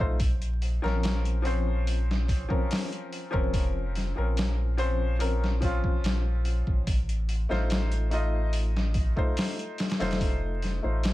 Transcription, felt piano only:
0.00 0.17 A3 medium
0.00 0.17 D#4 medium
0.00 0.18 F4 medium
0.00 0.18 C5 medium
0.82 1.40 F3 loud
0.82 1.40 C4 medium
0.82 1.40 C#4 medium
0.82 1.40 A#4 loud
1.42 2.44 F3 loud
1.42 2.44 C4 medium
1.42 2.45 C#4 medium
1.47 2.46 C5 loud
2.49 3.27 F3 medium
2.49 3.28 C4 medium
2.49 3.28 C#4 medium
2.49 3.29 A#4 medium
3.31 4.10 F3 medium
3.31 4.11 C4 medium
3.31 4.11 C#4 medium
3.31 4.11 A#4 loud
4.16 4.73 F3 medium
4.16 4.73 C4 medium
4.16 4.74 C#4 medium
4.16 4.74 A#4 medium
4.77 5.15 F3 loud
4.77 5.15 C4 medium
4.77 5.15 C#4 medium
4.77 5.16 C5 loud
5.19 5.55 F3 medium
5.19 5.56 C4 medium
5.19 5.56 C#4 medium
5.19 5.56 A#4 loud
5.60 6.84 F3 loud
5.60 6.84 C4 medium
5.60 6.85 C#4 medium
5.60 6.86 F4 loud
7.49 8.06 A3 loud
7.49 8.07 D#4 medium
7.49 8.07 F4 medium
7.49 8.07 C5 loud
8.10 9.11 A3 medium
8.10 9.11 D#4 medium
8.10 9.12 F4 medium
8.10 9.13 D#5 loud
9.16 9.95 A3 medium
9.16 9.95 D#4 medium
9.16 9.95 F4 medium
9.16 9.96 C5 loud
9.99 10.78 A3 loud
9.99 10.78 D#4 medium
9.99 10.79 F4 medium
9.99 10.79 C5 loud
10.82 11.13 A3 medium
10.82 11.13 D#4 medium
10.82 11.13 F4 medium
10.82 11.13 C5 medium

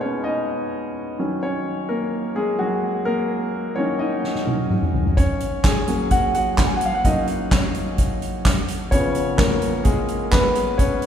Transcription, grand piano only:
0.00 1.21 B2 soft
0.00 1.21 G#3 medium
0.00 1.21 A#3 medium
0.00 1.21 B3 medium
0.00 0.24 C#4 medium
0.00 0.10 D#4 soft
0.00 1.21 G#4 medium
0.00 1.21 A#4 medium
0.00 1.21 B4 medium
0.00 0.26 C#5 medium
0.24 1.16 D#4 soft
0.24 1.14 D#5 medium
1.19 3.02 D#3 soft
1.19 2.59 F#3 soft
1.19 1.42 C#4 soft
1.43 1.87 C#4 medium
1.43 1.91 C#5 medium
1.89 2.33 A#3 medium
1.89 2.37 A#4 medium
2.36 2.59 G#3 medium
2.36 2.60 G#4 medium
2.59 3.04 F#3 medium
2.59 3.08 F#4 medium
3.05 3.73 A#3 medium
3.05 3.78 A#4 medium
3.76 4.43 D#3 soft
3.76 4.44 F#3 soft
3.76 3.99 C#4 medium
3.76 4.00 C#5 medium
3.99 4.90 D#4 medium
3.99 4.89 D#5 medium
4.46 4.68 D#3 soft
4.46 4.68 F#3 soft
4.46 4.68 C#4 soft
5.17 5.61 C#4 medium
5.17 5.65 C#5 medium
5.64 6.08 G#4 medium
5.64 6.07 G#5 medium
5.88 7.04 F#3 soft
5.88 7.04 A#3 soft
5.88 7.05 C#4 soft
6.11 6.33 F#4 medium
6.11 6.33 F#5 medium
6.35 6.67 F#4 medium
6.35 6.69 F#5 medium
6.67 6.77 G#5 medium
6.76 6.86 F#5 medium
6.85 6.95 F5 medium
6.95 7.04 F#5 medium
7.05 7.72 F#3 soft
7.05 7.72 A#3 soft
7.05 7.51 C#4 soft
7.05 7.49 D#4 medium
7.05 7.49 D#5 medium
7.52 7.96 C#4 soft
7.52 7.95 C#5 medium
8.91 10.75 C#3 soft
8.91 10.75 F3 soft
8.91 10.32 B3 medium
8.91 9.36 C#4 medium
8.91 9.35 C#5 medium
9.38 9.83 A#3 medium
9.38 9.86 A#4 medium
9.84 10.30 G#3 medium
9.84 10.28 G#4 medium
10.31 10.76 B3 medium
10.31 10.80 B4 medium
10.78 11.06 C#4 medium
10.78 11.06 C#5 medium

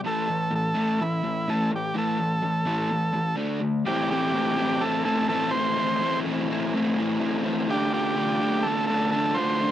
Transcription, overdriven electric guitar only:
0.04 0.26 A2 medium
0.04 0.27 E3 medium
0.04 0.27 A3 loud
0.27 0.49 A2 medium
0.27 0.50 E3 medium
0.50 0.73 A2 medium
0.50 0.73 E3 medium
0.75 0.98 A2 medium
0.75 0.98 E3 medium
0.75 0.99 A3 loud
1.00 1.21 A2 medium
1.00 1.22 E3 medium
1.24 1.45 A2 medium
1.24 1.45 E3 medium
1.48 1.70 A2 medium
1.48 1.71 E3 loud
1.48 1.71 A3 medium
1.71 1.93 A2 medium
1.71 1.93 E3 medium
1.94 2.17 A2 medium
1.94 2.17 E3 medium
1.94 2.18 A3 loud
2.18 2.40 A2 medium
2.18 2.40 E3 medium
2.42 2.64 A2 medium
2.42 2.64 E3 medium
2.65 2.89 A2 medium
2.65 2.89 E3 medium
2.65 2.89 A3 loud
2.91 3.12 A2 medium
2.91 3.13 E3 medium
3.13 3.35 A2 medium
3.13 3.36 E3 medium
3.36 3.59 D3 medium
3.36 3.59 A3 loud
3.36 3.60 D4 medium
3.60 3.83 D3 medium
3.60 3.83 A3 medium
3.85 4.09 A2 medium
3.85 4.10 E3 loud
3.85 4.11 A3 loud
3.85 4.11 C4 loud
3.85 4.12 E4 loud
4.10 4.31 A2 medium
4.10 4.33 E3 loud
4.10 4.33 A3 medium
4.10 4.33 C4 loud
4.10 4.34 E4 medium
4.32 4.56 A2 medium
4.32 4.56 E3 medium
4.32 4.56 A3 loud
4.32 4.58 C4 loud
4.32 4.59 E4 loud
4.56 4.78 A2 medium
4.56 4.79 E3 medium
4.56 4.80 A3 medium
4.56 4.81 C4 medium
4.56 4.81 E4 medium
4.79 5.02 A2 medium
4.79 5.04 E3 medium
4.79 5.05 A3 loud
4.79 5.05 C4 loud
4.79 5.05 E4 loud
5.04 5.28 A2 medium
5.04 5.29 E3 medium
5.04 5.30 A3 medium
5.04 5.30 C4 medium
5.04 5.31 E4 medium
5.29 5.52 A2 loud
5.29 5.53 E3 loud
5.29 5.55 A3 loud
5.29 5.54 C4 loud
5.29 5.55 E4 loud
5.54 5.75 A2 medium
5.54 5.76 E3 medium
5.54 5.77 A3 medium
5.54 5.77 C4 medium
5.54 5.78 E4 medium
5.76 6.00 A2 loud
5.76 6.01 E3 loud
5.76 6.02 A3 loud
5.76 6.02 C4 loud
5.76 6.03 E4 loud
6.01 6.24 A2 medium
6.01 6.25 E3 medium
6.01 6.26 A3 loud
6.01 6.27 C4 loud
6.01 6.27 E4 loud
6.25 6.48 A2 loud
6.25 6.49 E3 loud
6.25 6.50 A3 loud
6.25 6.50 C4 loud
6.25 6.51 E4 loud
6.50 6.72 A2 medium
6.50 6.72 E3 loud
6.50 6.73 A3 medium
6.50 6.74 C4 medium
6.50 6.74 E4 loud
6.73 6.95 A2 loud
6.73 6.96 E3 medium
6.73 6.97 A3 loud
6.73 6.97 C4 loud
6.73 6.98 E4 loud
6.96 7.18 A2 loud
6.96 7.18 E3 medium
6.96 7.20 A3 medium
6.96 7.19 C4 medium
6.96 7.20 E4 loud
7.19 7.42 A2 loud
7.19 7.42 E3 loud
7.19 7.44 A3 loud
7.19 7.44 C4 loud
7.19 7.44 E4 loud
7.43 7.66 A2 medium
7.43 7.67 E3 medium
7.43 7.69 A3 medium
7.43 7.67 C4 loud
7.43 7.68 E4 medium
7.69 7.91 D3 medium
7.69 7.92 A3 medium
7.69 7.93 D4 loud
7.69 7.94 F4 loud
7.91 8.14 D3 medium
7.91 8.15 A3 medium
7.91 8.17 D4 medium
7.91 8.16 F4 loud
8.15 8.40 D3 loud
8.15 8.42 A3 loud
8.15 8.42 D4 loud
8.15 8.42 F4 loud
8.41 8.63 D3 medium
8.41 8.65 A3 medium
8.41 8.66 D4 medium
8.41 8.66 F4 loud
8.64 8.88 D3 loud
8.64 8.90 A3 loud
8.64 8.89 D4 loud
8.64 8.89 F4 loud
8.89 9.11 D3 medium
8.89 9.13 A3 medium
8.89 9.13 D4 medium
8.89 9.13 F4 medium
9.12 9.35 D3 loud
9.12 9.37 A3 loud
9.12 9.36 D4 loud
9.12 9.37 F4 loud
9.36 9.58 D3 medium
9.36 9.60 A3 medium
9.36 9.60 D4 medium
9.36 9.60 F4 medium
9.59 9.71 D3 loud
9.59 9.71 A3 loud
9.59 9.71 D4 loud
9.59 9.71 F4 loud

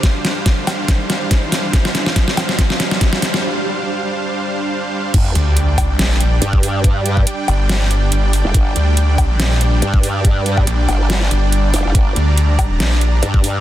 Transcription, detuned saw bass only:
5.35 5.79 D2 medium
5.79 5.98 C#2 medium
5.99 6.40 A#1 loud
7.48 8.10 G1 loud
8.12 8.43 G1 loud
8.76 9.38 D2 loud
9.40 9.81 A#1 medium
10.67 10.87 A#1 loud
11.31 11.72 G1 loud
12.16 12.78 D2 loud
12.80 13.21 A#1 loud

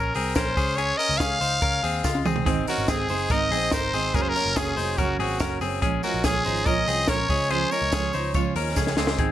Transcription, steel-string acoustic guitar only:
2.45 2.66 G#2 loud
2.45 2.67 D#3 medium
2.45 2.67 G#3 loud
2.45 2.67 C4 medium
2.45 2.65 D#4 medium
2.66 2.87 G#3 soft
2.66 2.88 C4 medium
2.66 2.88 D#4 medium
2.87 3.09 D#3 medium
2.87 3.09 G#3 medium
2.87 3.09 C4 medium
2.87 3.08 D#4 medium
3.09 3.30 G#3 soft
3.09 3.30 C4 medium
3.09 3.30 D#4 medium
3.30 3.51 G#2 medium
3.30 3.52 D#3 medium
3.30 3.52 G#3 medium
3.30 3.52 C4 medium
3.30 3.50 D#4 medium
3.51 3.72 G#3 medium
3.51 3.73 C4 medium
3.51 3.72 D#4 medium
3.72 3.93 D#3 medium
3.72 3.94 G#3 medium
3.72 3.94 C4 medium
3.72 3.92 D#4 medium
3.94 4.15 G#3 soft
3.94 4.15 C4 soft
3.94 4.15 D#4 medium
4.14 4.35 F#2 medium
4.14 4.36 C#3 medium
4.14 4.36 F#3 medium
4.14 4.35 A#3 medium
4.14 4.33 C#4 loud
4.34 4.56 F#3 soft
4.34 4.57 A#3 medium
4.34 4.56 C#4 medium
4.56 4.77 C#3 medium
4.56 4.78 F#3 medium
4.56 4.77 A#3 medium
4.56 4.75 C#4 medium
4.76 4.98 F#3 soft
4.76 4.99 A#3 soft
4.76 4.98 C#4 medium
4.98 5.20 F#2 medium
4.98 5.20 C#3 medium
4.98 5.20 F#3 medium
4.98 5.19 A#3 medium
4.98 5.17 C#4 medium
5.19 5.40 F#3 soft
5.19 5.41 A#3 soft
5.19 5.40 C#4 medium
5.40 5.61 C#3 medium
5.40 5.62 F#3 medium
5.40 5.61 A#3 medium
5.40 5.60 C#4 medium
5.61 5.82 F#3 soft
5.61 5.83 A#3 medium
5.61 5.82 C#4 medium
5.82 6.03 A#2 medium
5.82 6.04 F3 loud
5.82 6.03 G#3 loud
5.82 6.01 C#4 loud
6.02 6.23 F3 medium
6.02 6.24 G#3 medium
6.02 6.24 C#4 medium
6.23 6.45 A#2 medium
6.23 6.46 F3 medium
6.23 6.45 G#3 medium
6.23 6.43 C#4 medium
6.44 6.65 F3 soft
6.44 6.66 G#3 medium
6.44 6.66 C#4 medium
6.66 6.87 A#2 medium
6.66 6.88 F3 medium
6.66 6.87 G#3 medium
6.66 6.85 C#4 medium
6.86 7.07 F3 medium
6.86 7.08 G#3 medium
6.86 7.08 C#4 medium
7.07 7.29 A#2 medium
7.07 7.30 F3 medium
7.07 7.29 G#3 medium
7.07 7.28 C#4 medium
7.29 7.50 F3 soft
7.29 7.51 G#3 medium
7.29 7.50 C#4 medium
7.51 7.72 C#3 medium
7.51 7.72 F3 medium
7.51 7.71 G#3 medium
7.51 7.69 C#4 medium
7.71 7.92 F3 soft
7.71 7.93 G#3 medium
7.71 7.92 C#4 medium
7.92 8.14 C#3 medium
7.92 8.14 F3 medium
7.92 8.13 G#3 medium
7.92 8.11 C#4 medium
8.12 8.34 F3 soft
8.12 8.34 G#3 medium
8.12 8.34 C#4 medium
8.34 8.55 C#3 loud
8.34 8.56 F3 loud
8.34 8.55 G#3 loud
8.34 8.53 C#4 loud
8.54 8.75 F3 medium
8.54 8.76 G#3 medium
8.54 8.76 C#4 medium
8.76 8.97 C#3 medium
8.76 8.98 F3 medium
8.76 8.98 G#3 medium
8.76 8.96 C#4 medium
8.97 9.19 F3 medium
8.97 9.18 G#3 medium
8.97 9.19 C#4 medium
9.18 9.32 G#2 medium
9.18 9.32 D#3 loud
9.18 9.32 G#3 medium
9.18 9.32 C4 loud
9.18 9.32 D#4 loud

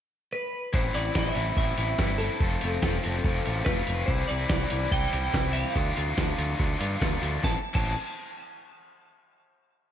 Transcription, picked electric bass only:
0.74 0.89 A1 medium
0.95 1.09 A1 medium
1.15 1.30 A1 medium
1.36 1.51 A1 medium
1.57 1.72 A1 medium
1.78 1.93 A1 medium
1.99 2.28 G1 medium
2.40 2.55 F1 medium
2.63 2.77 F1 medium
2.83 2.97 F1 medium
3.06 3.19 F1 medium
3.24 3.39 F1 medium
3.47 3.61 A1 medium
3.66 3.81 F1 medium
3.88 4.03 F1 medium
4.08 4.23 C2 medium
4.31 4.45 C2 medium
4.50 4.65 C2 medium
4.72 4.86 C2 loud
4.92 5.07 C2 medium
5.13 5.28 C2 medium
5.34 5.63 C2 medium
5.76 5.91 D2 medium
5.97 6.12 D2 medium
6.18 6.33 D2 medium
6.38 6.53 D2 medium
6.60 6.74 D2 medium
6.81 6.95 G2 medium
7.02 7.16 D2 medium
7.22 7.37 D2 medium
7.44 7.56 A1 medium
7.75 7.95 A1 medium

